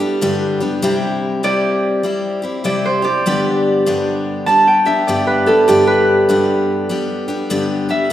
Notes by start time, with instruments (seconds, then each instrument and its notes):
Already playing: harp D4 E4 G4 A4
0.00 steel-string acoustic guitar G3 B3 D4 G4
0.21 steel-string acoustic guitar G2 D3 G3 B3 D4 G4
0.60 steel-string acoustic guitar G3 B3 D4 G4
0.82 steel-string acoustic guitar C3 G3 C4 E4 G4
1.43 steel-string acoustic guitar C3 G3 C4 E4 G4, harp D5
2.03 steel-string acoustic guitar G3 C4 E4 G4
2.42 steel-string acoustic guitar C4 E4 G4
2.64 steel-string acoustic guitar C3 G3 C4 E4 G4, harp D5
2.85 harp C5
3.02 steel-string acoustic guitar C4 E4 G4, harp D5
3.26 steel-string acoustic guitar G2 D3 G3 B3 D4 G4
3.86 steel-string acoustic guitar G2 D3 G3 B3 D4 G4
4.46 steel-string acoustic guitar G3 B3 D4 G4, harp A5
4.67 harp G5
4.85 steel-string acoustic guitar G3 B3 D4 G4, harp E5
5.07 steel-string acoustic guitar G2 D3 G3 B3 D4 G4, harp D5
5.27 harp B4
5.46 steel-string acoustic guitar G3 B3 D4 G4, harp A4
5.68 steel-string acoustic guitar G2 D3 G3 B3 D4 G4, harp G4
5.87 harp B4
6.29 steel-string acoustic guitar G2 D3 G3 B3 D4 G4
6.89 steel-string acoustic guitar G3 B3 D4 G4
7.28 steel-string acoustic guitar G3 B3 D4 G4
7.50 steel-string acoustic guitar G2 D3 G3 B3 D4 G4
7.89 steel-string acoustic guitar G3 B3 D4 G4, harp E5